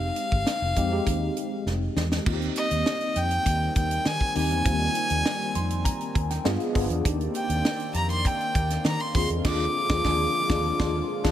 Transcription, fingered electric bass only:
0, 0, Header, 1, 2, 480
1, 0, Start_track
1, 0, Tempo, 598802
1, 1815, Time_signature, 4, 2, 24, 8
1, 9069, End_track
2, 0, Start_track
2, 0, Title_t, "Fingered electric bass"
2, 0, Program_c, 0, 33
2, 255, Note_on_c, 0, 31, 85
2, 339, Note_off_c, 0, 31, 0
2, 494, Note_on_c, 0, 29, 95
2, 579, Note_off_c, 0, 29, 0
2, 615, Note_on_c, 0, 41, 84
2, 784, Note_off_c, 0, 41, 0
2, 854, Note_on_c, 0, 39, 78
2, 1023, Note_off_c, 0, 39, 0
2, 1331, Note_on_c, 0, 29, 74
2, 1501, Note_off_c, 0, 29, 0
2, 1571, Note_on_c, 0, 40, 87
2, 1742, Note_off_c, 0, 40, 0
2, 1815, Note_on_c, 0, 39, 88
2, 1984, Note_off_c, 0, 39, 0
2, 2173, Note_on_c, 0, 39, 85
2, 2258, Note_off_c, 0, 39, 0
2, 2532, Note_on_c, 0, 41, 78
2, 2702, Note_off_c, 0, 41, 0
2, 2773, Note_on_c, 0, 39, 90
2, 2943, Note_off_c, 0, 39, 0
2, 3014, Note_on_c, 0, 39, 88
2, 3183, Note_off_c, 0, 39, 0
2, 3251, Note_on_c, 0, 51, 90
2, 3337, Note_off_c, 0, 51, 0
2, 3492, Note_on_c, 0, 39, 89
2, 3612, Note_off_c, 0, 39, 0
2, 3612, Note_on_c, 0, 40, 84
2, 3698, Note_off_c, 0, 40, 0
2, 3730, Note_on_c, 0, 39, 102
2, 3901, Note_off_c, 0, 39, 0
2, 4090, Note_on_c, 0, 39, 82
2, 4176, Note_off_c, 0, 39, 0
2, 4451, Note_on_c, 0, 41, 73
2, 4706, Note_off_c, 0, 41, 0
2, 4934, Note_on_c, 0, 39, 79
2, 5103, Note_off_c, 0, 39, 0
2, 5170, Note_on_c, 0, 43, 100
2, 5256, Note_off_c, 0, 43, 0
2, 5414, Note_on_c, 0, 31, 95
2, 5499, Note_off_c, 0, 31, 0
2, 5528, Note_on_c, 0, 40, 84
2, 5615, Note_off_c, 0, 40, 0
2, 5653, Note_on_c, 0, 39, 98
2, 5823, Note_off_c, 0, 39, 0
2, 6006, Note_on_c, 0, 39, 101
2, 6094, Note_off_c, 0, 39, 0
2, 6366, Note_on_c, 0, 41, 85
2, 6623, Note_off_c, 0, 41, 0
2, 6854, Note_on_c, 0, 39, 94
2, 7023, Note_off_c, 0, 39, 0
2, 7090, Note_on_c, 0, 51, 88
2, 7176, Note_off_c, 0, 51, 0
2, 7332, Note_on_c, 0, 39, 110
2, 7418, Note_off_c, 0, 39, 0
2, 7452, Note_on_c, 0, 40, 100
2, 7538, Note_off_c, 0, 40, 0
2, 7573, Note_on_c, 0, 39, 95
2, 7737, Note_off_c, 0, 39, 0
2, 7932, Note_on_c, 0, 39, 110
2, 8035, Note_off_c, 0, 39, 0
2, 8052, Note_on_c, 0, 39, 114
2, 8217, Note_off_c, 0, 39, 0
2, 8413, Note_on_c, 0, 39, 107
2, 8577, Note_off_c, 0, 39, 0
2, 8655, Note_on_c, 0, 39, 106
2, 8818, Note_off_c, 0, 39, 0
2, 9014, Note_on_c, 0, 39, 93
2, 9069, Note_off_c, 0, 39, 0
2, 9069, End_track
0, 0, End_of_file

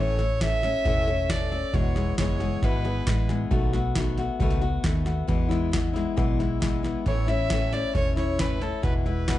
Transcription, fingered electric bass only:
0, 0, Header, 1, 2, 480
1, 0, Start_track
1, 0, Key_signature, 3, "major"
1, 0, Tempo, 443787
1, 1878, Time_signature, 4, 2, 24, 8
1, 10152, End_track
2, 0, Start_track
2, 0, Title_t, "Fingered electric bass"
2, 0, Program_c, 0, 33
2, 0, Note_on_c, 0, 33, 73
2, 801, Note_off_c, 0, 33, 0
2, 925, Note_on_c, 0, 28, 77
2, 1760, Note_off_c, 0, 28, 0
2, 1877, Note_on_c, 0, 28, 80
2, 2296, Note_off_c, 0, 28, 0
2, 2356, Note_on_c, 0, 30, 72
2, 2764, Note_off_c, 0, 30, 0
2, 2837, Note_on_c, 0, 32, 72
2, 3245, Note_off_c, 0, 32, 0
2, 3318, Note_on_c, 0, 33, 71
2, 3726, Note_off_c, 0, 33, 0
2, 3797, Note_on_c, 0, 35, 83
2, 4636, Note_off_c, 0, 35, 0
2, 4752, Note_on_c, 0, 37, 76
2, 5163, Note_off_c, 0, 37, 0
2, 5235, Note_on_c, 0, 39, 73
2, 5644, Note_off_c, 0, 39, 0
2, 5713, Note_on_c, 0, 40, 77
2, 6553, Note_off_c, 0, 40, 0
2, 6680, Note_on_c, 0, 35, 64
2, 7517, Note_off_c, 0, 35, 0
2, 7639, Note_on_c, 0, 33, 72
2, 8476, Note_off_c, 0, 33, 0
2, 8594, Note_on_c, 0, 28, 66
2, 9433, Note_off_c, 0, 28, 0
2, 9555, Note_on_c, 0, 28, 82
2, 10152, Note_off_c, 0, 28, 0
2, 10152, End_track
0, 0, End_of_file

